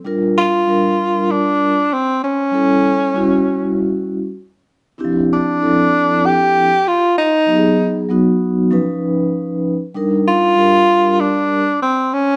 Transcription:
0.05 G3 D4 F4 A#4
0.38 F4
0.67 G3 D4 F4 A#4
1.31 D4
1.93 C4
2.24 C#4
2.52 G3 C#4 E4 A4
3.14 G3 C#4 E4 F#4
4.98 C4 D4 E4 G4
5.05 F3
5.33 D4
5.60 C4 D4 E4 A4
5.67 F3
6.26 G4
6.88 F4
7.18 D#4
7.46 F#3 B3 D#4 G4
7.56 G#4
8.09 F#3 B3 D#4 F#4
8.71 F3 C#4 D#4 B4
9.94 G3 D4 D#4 A#4
10.28 F4
10.56 G3 D4 G4 A#4
11.20 D4
11.82 C4
12.13 C#4

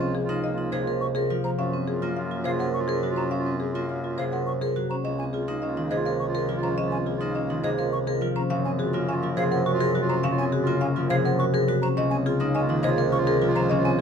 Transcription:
Already playing: C#2 C3 F3 A#3 F4
0.01 C4
0.15 G#4
0.24 F4
0.29 A#3 D#4
0.44 D#5
0.53 F4
0.58 D#4
0.72 C3 G#4 C5
0.83 F4
0.87 A#4
1.01 C#6
1.13 F4 G#4 A#4
1.30 F3 F4
1.44 C5 A#5
1.57 F#2 C#4 F4 F5
1.73 C4
1.87 F4 G#4
2.02 A#3 F4
2.16 F4 F5
2.31 F4
2.44 C3 F4 G#4 C5 F5
2.59 A#4 F#5
2.74 F4 C#6
2.88 G#4 A#4
3.03 F#3 F#4
3.08 F4
3.16 C#4 C5 A#5
3.31 C#4 F5
3.39 F4
3.46 C4
3.60 G#4
3.69 F4
3.75 A#3 F4
3.89 F5
4.00 F4
4.04 F4
4.18 C3 G#4 C5 F5
4.29 F4 A#4 F#5
4.46 C#6
4.60 F4 G#4 A#4
4.76 F#3 F#4
4.90 C#4 C5 A#5
5.04 C#2 C#4 F4 D#5
5.18 C4 G#5
5.33 F4 G#4
5.48 A#3 D#4
5.62 C#4 F4 D#5
5.77 D#3 D#4
5.91 C3 G#4 C5 D#5
5.95 F4
6.05 A#4 F5
6.20 C#6
6.26 F4
6.35 G#4 A#4
6.49 F3 F4
6.56 F4
6.63 C#4 C5 A#5
6.78 C#4 D#5
6.86 F4
6.92 C4 G#5
7.06 F4 G#4
7.16 F4
7.21 A#3 D#4
7.35 C#4 D#5
7.46 D#3 D#4 F4
7.63 C3 G#4 C5 D#5
7.76 F4 A#4 F5
7.93 C#6
8.06 F4 G#4 A#4
8.21 F3 F4
8.36 C#4 C5 A#5
8.50 F#2 C#3 C#4 F4 F5
8.65 C4 G#5
8.79 F4 F#4 G#4
8.93 A#3 F4
9.08 C#4 F4 F5 G#5
9.22 F3 F4
9.37 C3 G#4 C5 F5
9.41 F4
9.51 A#4 F#5
9.66 F#4 C#6
9.71 F4
9.80 G#4 A#4
9.95 F#3 F#4
10.01 F4
10.09 C#4 C5 A#5
10.23 C#3 C#4 F5
10.32 F4
10.38 C4 G#5
10.52 F#4 G#4
10.61 F4
10.67 A#3 F4
10.81 C#4 F5 G#5
10.91 F4
10.96 F3 F4
11.10 C3 G#4 C5 F5
11.21 F4 F#5
11.25 A#4
11.39 F#4 C#6
11.52 F4 G#4 A#4
11.68 F#3 F#4
11.82 C#4 C5 A#5
11.97 C#2 C#3 C#4 F4 D#5
12.10 C4 G#5
12.26 F4 G#4
12.40 A#3 D#4
12.54 C#4 F4 D#5 G#5
12.69 D#3 D#4
12.83 C3 F4 G#4 C5 D#5
12.97 A#4 F5
13.12 F4 C#6
13.17 F4
13.27 G#4 A#4
13.41 F3 F4
13.47 F4
13.55 C#4 C5 A#5
13.70 C#3 C#4 D#5
13.78 F4
13.85 C4 G#5

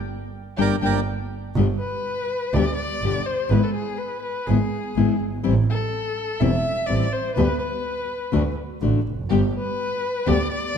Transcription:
0.57 G1 G3 A#3 D4 G4 A#4 D5 G5
0.81 G1 G3 A#3 D4 G4 A#4 D5 G5
0.85 G5
1.56 G1 B2 D3 G3 B3 G4
1.79 B4
2.54 D2 B2 D3 G3 B3 G4 D5
2.75 D5
3.01 G1 B2 D3 G3 B3 G4
3.26 C5
3.50 G#1 G#3 B3 E4 B4
3.64 A4
3.74 G#4
3.98 B4
4.22 B4
4.47 G#1 G#3 B3 E4 G#4
4.96 G#1 G#3 B3 E4
5.21 G1
5.43 A1 E3 G3 C4 E4
5.70 A4
6.40 E1 E3 G3 C4 E4 E5
6.87 A1 E3 G3 C4 E4 D5
7.12 C5
7.35 D2 D3 G3 B3 G4 B4
7.59 B4
8.32 D2 D3 A3 D4 F#4
8.81 A1 D3 A3 D4 F#4
9.07 F1
9.30 G1 D3 G3 A3 B3 G4
9.58 B4
10.26 D2 D3 G3 A3 B3 G4 D5
10.52 D5
10.75 A3 B3

